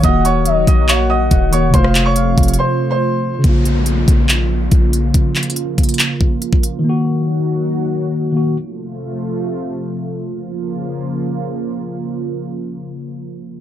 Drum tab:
HH |x-----------x-----------x-----------x-----------x-----------------------x-----------x-----------|x-----------x-----------x-----------x--x--x--x--------------------------------------------------|x-----------x-----------x-----------x-----------x-----------------------x-----------x-----------|x-----------x---x---x---x-----------x--x--x--x--x-----------------------x-----------x-----------|
CP |------------------------------------------------x-----------------------------------------------|------------x-----------------------------------------------------------------------------------|------------------------------------------------x-----------------------------------------------|------------x-----------------------------------x-----------------------------------------------|
SD |------------------------------------------------------------------------------------------------|------r-----------------------------------------------------------------------------------------|------------------------------------------------------------------------------------------------|------------------------------------------------------------------------------------------------|
BD |o-----------------------------------o-----------------------------------o-----------------------|o-----------------------------------o-----------------------------------------------------------|o-----------------------------------o-----------------------------------o-----------------------|o-----------------------------------o-----------------------o-----------------o-----------------|

HH |------------------------------------------------------------------------------------------------|------------------------------------------------------------------------------------------------|------------------------------------------------------------------------------------------------|------------------------------------------------------------------------------------------------|
CP |------------------------------------------------------------------------------------------------|------------------------------------------------------------------------------------------------|------------------------------------------------------------------------------------------------|------------------------------------------------------------------------------------------------|
SD |------------------------------------------------------------------------------------------------|------------------------------------------------------------------------------------------------|------------------------------------------------------------------------------------------------|------------------------------------------------------------------------------------------------|
BD |------------------------------------------------------------------------------------------------|------------------------------------------------------------------------------------------------|------------------------------------------------------------------------------------------------|------------------------------------------------------------------------------------------------|